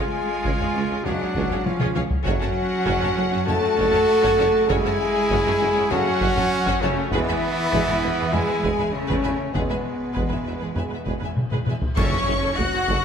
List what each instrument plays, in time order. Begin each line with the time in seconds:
Already playing: cello section G#3, trumpet F4, french horn section G#4, violin section G#5
0.01 viola section C#4 G#4
0.43 double bass section C#2, tuba C#2, viola section C#4 G#4, violin section F4 G#4, taiko
0.59 double bass section C#2, viola section C#4 G#4, violin section C#5 F5, taiko low-mid
0.73 double bass section C#2, tuba C#2, viola section C#4 G#4, violin section G#4 C#5
0.90 double bass section C#2, viola section C#4 G#4, violin section F4 G#4
1.03 tuba C#2, double bass section C#2, trombone section C#3 G#3, cello section F#3, viola section C#4, trumpet D4, french horn section F#4, violin section C#5 F5 F#5, taiko low-mid
1.07 viola section G#4
1.21 double bass section C#2, viola section C#4 G#4, violin section G#4 C#5
1.35 tuba C#2, double bass section C#2, viola section C#4 G#4, violin section F4 G#4, taiko
1.50 double bass section C#2, viola section C#4 G#4, violin section C#5 F5, taiko low-mid
1.64 cello section F3, trumpet C#4, french horn section F4, violin section F5, taiko high
1.80 double bass section C#2, viola section C#4 G#4, violin section F4 G#4, taiko mid
1.95 double bass section C#2, tuba C#2, viola section C#4 G#4, violin section C#5 F5, taiko high
2.11 taiko low
2.24 tuba F#1, double bass section F#2, trombone section C#3 A3, cello section F#3, viola section C#4 F#4, trumpet C#4, french horn section F#4, violin section F#4 C#5, taiko
2.28 violin section F#5
2.41 double bass section F#2, viola section C#4 F#4, violin section C#5 A5
2.86 tuba F#1, double bass section F#2, viola section C#4 F#4, violin section F#4 C#5, taiko
3.00 double bass section F#2, viola section C#4 F#4, violin section C#5 A5, taiko low-mid
3.16 tuba F#1, double bass section F#2, viola section C#4 F#4, violin section A4 F#5
3.31 double bass section F#2, viola section C#4 F#4, violin section F#4 C#5
3.46 tuba F#1, double bass section F#2, trombone section C#3 A3, cello section A3, viola section C#4 F#4, trumpet F#4, french horn section A4, violin section C#5 A5, taiko low-mid
3.61 double bass section F#2, viola section C#4 F#4, violin section A4 F#5
3.75 tuba F#1, double bass section F#2, viola section C#4 F#4, violin section F#4 C#5, taiko
3.91 double bass section F#2, viola section C#4 F#4, violin section C#5 A5, taiko low-mid
4.22 double bass section F#2, viola section C#4 F#4, violin section F#4 C#5, taiko
4.37 tuba F#1, double bass section F#2, viola section C#4 F#4, violin section C#5 A5
4.66 tuba F#1, double bass section F#2, trombone section C#3 F#3, trumpet E4, violin section F#4 C#5, viola section F#4, french horn section G#4, taiko
4.70 cello section G#3, viola section C#4, violin section G#5
4.84 double bass section F#2, viola section C#4 F#4, violin section C#5 A5
5.30 tuba F#1, double bass section F#2, viola section C#4 F#4, violin section F#4 C#5, taiko
5.45 double bass section F#2, viola section C#4 F#4, violin section C#5 A5, taiko low-mid
5.59 tuba F#1, double bass section F#2, viola section C#4 F#4, violin section A4 F#5
5.74 double bass section F#2, viola section C#4 F#4, violin section F#4 C#5
5.90 tuba F#1, double bass section F#2, trombone section C#3 A3, cello section F#3, trumpet C#4, viola section C#4 F#4, french horn section F#4, violin section C#5 F#5 A5, taiko low-mid
6.06 double bass section F#2, viola section C#4 F#4, violin section A4 F#5
6.20 tuba F#1, double bass section F#2, viola section C#4 F#4, violin section F#4 C#5, taiko
6.35 double bass section F#2, viola section C#4 F#4, violin section C#5 A5, taiko low-mid
6.65 double bass section F#2, viola section C#4 F#4, violin section F#4 C#5, taiko
6.81 tuba F#1, double bass section F#2, cello section C#3, trumpet A3, viola section C#4 F#4, french horn section C#4, violin section C#5 A5
7.12 tuba E1, double bass section E2, trombone section B2 G#3, cello section E3, viola section G#3 B4, trumpet B3, french horn section E4, violin section G#4 B4 E5, taiko
7.27 double bass section E2, viola section G#3 B4, violin section E5 G#5
7.72 tuba E1, double bass section E2, viola section G#3 B4, violin section G#4 B4, taiko
7.87 double bass section E2, viola section G#3 B4, violin section E5 G#5, taiko low-mid
8.03 tuba E1, double bass section E2, viola section G#3 B4, violin section B4 E5
8.18 double bass section E2, viola section G#3 B4, violin section G#4 B4
8.32 tuba E1, double bass section E2, trombone section B2 G#3, viola section G#3 B4, cello section G#3, trumpet E4, french horn section G#4, violin section E5 G#5, taiko low-mid
8.47 double bass section E2, viola section G#3 B4, violin section B4 E5
8.63 tuba E1, double bass section E2, viola section G#3 B4, violin section G#4 B4, taiko
8.78 double bass section E2, viola section G#3 B4, violin section E5 G#5, taiko low-mid
8.93 cello section C#3, trumpet A3, french horn section C#4, violin section C#5
9.09 double bass section E2, viola section G#3 B4, violin section G#4 B4, taiko
9.23 tuba E1, double bass section E2, viola section G#3 B4, violin section E5 G#5
9.53 tuba E1, double bass section E2, cello section B2, trombone section B2 G#3, viola section G#3 B4, trumpet G#3, french horn section B3, violin section G#4 B4, taiko
9.69 double bass section E2, viola section G#3 B4, violin section E5 G#5
10.14 tuba E1, double bass section E2, viola section G#3 B4, violin section G#4 B4, taiko
10.28 double bass section E2, viola section G#3 B4, violin section E5 G#5, taiko low-mid
10.44 tuba E1, double bass section E2, viola section G#3 B4, violin section B4 E5
10.59 double bass section E2, viola section G#3 B4, violin section G#4 B4
10.73 tuba E1, double bass section E2, trombone section B2 G#3, viola section G#3 B4, violin section G#5, taiko low-mid
10.78 violin section E5
10.90 double bass section E2, viola section G#3 B4, violin section B4 E5
11.05 tuba E1, double bass section E2, viola section G#3 B4, violin section G#4 B4, taiko
11.20 double bass section E2, viola section G#3 B4, violin section E5 G#5, taiko low-mid
11.37 taiko mid
11.51 double bass section E2, viola section G#3 B4, violin section G#4 B4, taiko mid
11.66 tuba E1, double bass section E2, viola section G#3 B4, violin section E5 G#5, taiko mid
11.82 taiko low
11.96 double bass section F#1, tuba F#1, timpani F#2, trombone section C#3 A3, viola section C#4 A4, french horn section C#4, cello section C#4, trumpet A4, violin section C#5 C#6, flute C#5, concert bass drum, taiko, crash
12.12 taiko low
12.27 double bass section F#1, tuba F#1, viola section F#3 C#4
12.43 double bass section F#1, viola section C#4 A4
12.56 double bass section F#1, tuba F#1, viola section A3 F#4, cello section F#4, flute F#5, violin section F#5 F#6, taiko low
12.61 french horn section F#4
12.73 double bass section F#1, viola section F#3 C#4
12.87 double bass section F#1, tuba F#1, viola section C#4 A4, taiko